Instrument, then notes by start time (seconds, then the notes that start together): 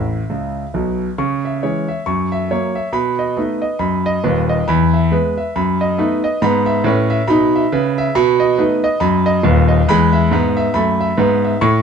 grand piano
Already playing: A1 A2 E4 E5
0.30 C#2 C#3
0.74 B1 B2
1.18 C#3 C#6
1.45 E5
1.63 E3 G#3 C#4 C#5
1.88 E5
2.06 F#2 C#6
2.32 E5
2.51 F#3 A#3 C#5
2.75 E5
2.93 B2 B5
3.19 D#5
3.37 A3 B3 D#4 B4
3.62 D#5
3.79 F#2 B5
4.06 D#5
4.24 D#1 D#2 B4
4.49 D#5
4.68 E2 B5
4.94 E5
5.12 G#3 B3 B4
5.37 E5
5.56 F#2 B5
5.81 D#5
5.98 A3 B3 D#4 B4
6.24 D#5
6.42 G#2 B3 B5
6.66 E5
6.84 A2 C#4 B4
7.10 E5
7.28 B2 D#4 B5
7.56 E5
7.72 C#3 B4
7.98 E5
8.15 B2 B5
8.40 D#5
8.58 A3 B3 D#4 B4
8.84 D#5
9.00 F#2 B5
9.26 D#5
9.43 D#1 D#2 B4
9.68 D#5
9.88 E2 G#3 B5
10.13 E5
10.31 G#2 B3 B4
10.57 E5
10.74 F#2 A3 B5
11.00 E5
11.17 G#2 B3 B4
11.44 E5
11.61 A2 C#6